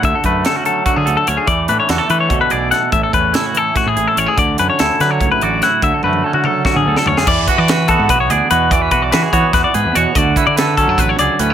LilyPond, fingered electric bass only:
\new Staff \with { instrumentName = "Fingered electric bass" } { \clef bass \time 7/8 \key e \mixolydian \tempo 4 = 145 d,16 r16 fis,8 r4 r16 d16 d,16 r16 d,16 r16 | e,8 a,16 r16 e,16 r16 e8 d,16 r16 b,,8 r8 | a,,16 r16 e,8 r4 r16 a,16 a,,16 r16 a,,16 r16 | d,8 fis,16 r16 d,16 r16 d8 cis,16 r16 a,,8 r8 |
d,16 r16 fis,8 r4 r16 d16 d,16 r16 d,16 r16 | e,8 r16 e4 gis,16 b,,8 d,16 r16 e,8~ | e,8 b,,8 e16 r16 e16 r16 e,16 r16 gis,16 e,16 e,16 r16 | d,8 r16 d4 fis,16 a,,8 cis,16 r16 d,8 | }